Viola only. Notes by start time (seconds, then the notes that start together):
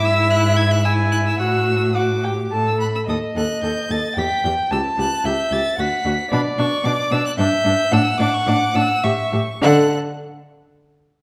Already playing: E4
0.85 E4
1.40 F#4
1.96 F#4
2.24 G4
2.53 A4
3.09 A4
3.37 A4
3.63 A4
3.91 A4
4.17 G4
4.44 G4
4.71 G4
4.98 G4
5.26 G4
5.52 G4
5.79 F#4
6.05 F#4
6.32 D4
6.59 D4
6.86 D4
7.12 D4
7.39 D4
7.65 D4
7.92 D4
8.20 D4
8.48 D4
8.75 D4
9.04 G4
9.33 G4
9.62 A4